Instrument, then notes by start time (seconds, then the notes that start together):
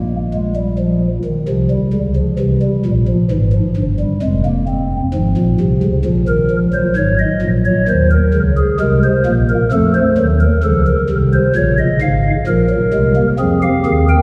pipe organ
Already playing: A#1 A#2 A#3
0.33 G#3
0.56 G3
0.79 F3
1.25 D#3
1.48 C2 C3 F3
1.70 G3
1.93 C#2 C#3
2.16 F3
2.39 C2 C3 E3
2.62 G3
2.86 A#1 A#2
3.08 F3
3.31 G#1 G#2 E3
3.53 F3
3.76 G1 G2
4.00 G3
4.22 F1 F2 G#3
4.46 A#3
4.68 C4
5.14 G#1 G#2 F3
5.37 A#1 A#2
5.60 C2 C3
5.83 C#2 C#3
6.05 A#1 A#2 F3
6.28 D#3 A#4
6.51 F3
6.74 F#3 C5
6.96 G#1 G#2 C#5
7.19 D#5
7.42 A#1 A#2
7.65 C#5
7.88 D#2 D#3 C5
8.11 A#4
8.34 C#2 C#3
8.58 G#4
8.80 C2 C3 G#3 A#4
9.03 C5
9.26 A#1 A#2 A#3
9.49 A#4
9.72 F2 F3 A3 A4
9.94 C5
10.18 D#2 D#3 F#3
10.41 A#4
10.63 C#2 C#3 F3 A4
10.87 A#4
11.10 C2 C3 D#3
11.33 C5
11.56 A#1 A#2 C#3 C#5
11.78 D#5
12.01 G#1 G#2 F5
12.47 A#1 A#2 F3 A#4
12.70 F#3
12.93 C2 C3 G#3
13.16 A#3
13.39 F2 F3 C4 G#4
13.63 G4 F5
13.86 D#2 D#3 G#4
14.09 A#4 G5